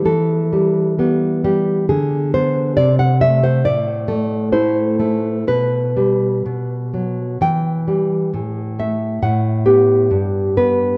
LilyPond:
\new Staff \with { instrumentName = "Nylon-string guitar" } { \time 2/4 \key e \minor \tempo 4 = 66 << { a'4. g'8 | gis'8 c''8 d''16 fis''16 e''16 c''16 | d''4 c''4 | b'4 r4 |
g''4. e''8 | fis''8 g'4 b'8 | } \\ { e8 g8 <g b>8 g8 | d8 b8 c8 a8 | a,8 a8 <a e'>8 a8 | b,8 g8 b,8 fis8 |
e8 g8 a,8 a8 | a,8 b8 g,8 b8 | } >> }